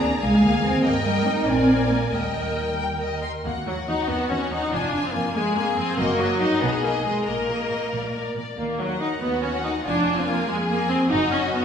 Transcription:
Already playing: viola section G#4, violin section D5 A#5
0.00 double bass section D2, cello section A#3
0.21 double bass section C2, cello section G#3, viola section G#4, violin section F5 G#5
0.42 double bass section D2, cello section A#3
0.63 double bass section D#2, cello section C4
0.83 double bass section G2, cello section A#3, viola section A#4, violin section D#5 G5
1.05 cello section G3
1.26 cello section D#4
1.46 double bass section A#1, cello section C4, viola section A#4, violin section D5 G#5
1.90 cello section A#3
2.12 double bass section D#2, cello section G3, viola section A#4, violin section D#5 G5
2.78 violin section G5
3.01 violin section D#5
3.22 violin section C6
3.44 cello section D#2, double bass section D#2, viola section A#3, violin section F#4 F#5
3.66 cello section D#2, viola section F#3, violin section F#5
3.87 cello section D#2, viola section D#4, violin section F#5
4.09 cello section D#2, viola section B3, violin section F#5
4.30 cello section D#2, viola section C#4, violin section F#5
4.51 cello section D#2, viola section D#4, violin section F#5
4.71 double bass section F1, cello section F2, viola section D4, violin section F4 G#5
4.93 cello section F2, violin section G#5
5.05 viola section C4
5.13 cello section F2, viola section A#3, violin section G#5
5.34 cello section F2, viola section G#3, violin section G#4 G#5
5.55 cello section F2, viola section A#3, violin section G#5
5.77 cello section F2, viola section C4, violin section G#5
5.97 double bass section F#1, cello section F#2, viola section A#3, violin section F#4 D#5
6.19 cello section F#2, viola section F#3, violin section D#5
6.40 cello section F#2, viola section D#4, violin section D#5
6.61 double bass section B1, cello section B2, viola section B3, violin section G#4 D#5
6.83 cello section B2, viola section A#3, violin section D#5
7.05 cello section B2, viola section G#3, violin section D#5
7.26 double bass section A#1, cello section A#2, viola section A#3, violin section A#4 D#5
7.48 cello section A#2, violin section D#5
7.70 cello section A#2, violin section D#5
7.92 double bass section A#1, cello section A#2, violin section D5
8.14 cello section A#2, violin section D5
8.36 cello section A#2, violin section D5
8.57 cello section D#2, double bass section D#2, viola section A#3
8.79 viola section F#3, violin section F#5
9.00 viola section D#4
9.21 cello section D#2, viola section B3, violin section F#4
9.42 viola section C#4, violin section F#5
9.64 viola section D#4
9.84 double bass section F1, cello section F2, viola section D4, violin section F4 G#5
10.07 violin section G#5
10.17 viola section C4
10.27 viola section A#3
10.47 cello section F2, viola section G#3, violin section G#4
10.69 viola section A#3, violin section G#5
10.89 viola section C4
11.09 double bass section F#1, cello section F#2, viola section D#4, violin section F#4 D#5
11.31 viola section C#4
11.52 viola section B3

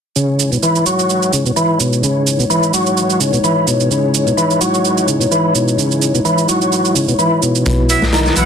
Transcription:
0.15 tonewheel organ C#3, analog synth pad G#3 D#4 E4 C#5, shaker
0.40 shaker
0.52 tonewheel organ B2, shaker
0.63 tonewheel organ E3, shaker
0.75 shaker
0.86 tonewheel organ F#3, shaker
0.99 shaker
1.10 shaker
1.23 shaker
1.33 tonewheel organ C#3, shaker
1.46 tonewheel organ B2, shaker
1.56 tonewheel organ E3, shaker
1.80 tonewheel organ B2, shaker
1.93 shaker
2.03 tonewheel organ C#3, shaker
2.27 shaker
2.39 tonewheel organ B2, shaker
2.50 tonewheel organ E3, shaker
2.63 shaker
2.74 tonewheel organ F#3, shaker
2.86 shaker
2.97 shaker
3.10 shaker
3.20 tonewheel organ C#3, shaker
3.33 tonewheel organ B2, shaker
3.44 tonewheel organ E3, shaker
3.67 tonewheel organ B2, shaker
3.80 shaker
3.91 tonewheel organ C#3, shaker
4.14 shaker
4.27 tonewheel organ B2, shaker
4.37 tonewheel organ E3, shaker
4.50 shaker
4.61 tonewheel organ F#3, shaker
4.74 shaker
4.85 shaker
4.97 shaker
5.08 tonewheel organ C#3, shaker
5.21 tonewheel organ B2, shaker
5.31 tonewheel organ E3, shaker
5.55 tonewheel organ B2, shaker
5.68 shaker
5.78 tonewheel organ C#3, shaker
5.91 shaker
6.02 shaker
6.14 tonewheel organ B2, shaker
6.25 tonewheel organ E3, shaker
6.38 shaker
6.49 tonewheel organ F#3, shaker
6.61 shaker
6.72 shaker
6.85 shaker
6.96 tonewheel organ C#3, shaker
7.08 tonewheel organ B2, shaker
7.19 tonewheel organ E3, shaker
7.43 tonewheel organ B2, shaker
7.55 shaker
7.66 sub bass B1, tonewheel organ B2, analog synth pad F#3 B3 B4, kick, closed hi-hat, shaker
7.89 horn section B3 E4 F#4 E5, closed hi-hat, shaker
8.02 sub bass B1, tonewheel organ A2, snare, shaker
8.13 tonewheel organ D#3, snare, closed hi-hat, shaker
8.26 snare, shaker
8.36 sub bass B1, tonewheel organ E3, horn section B3 E4 F#4 F#5, closed hi-hat, shaker

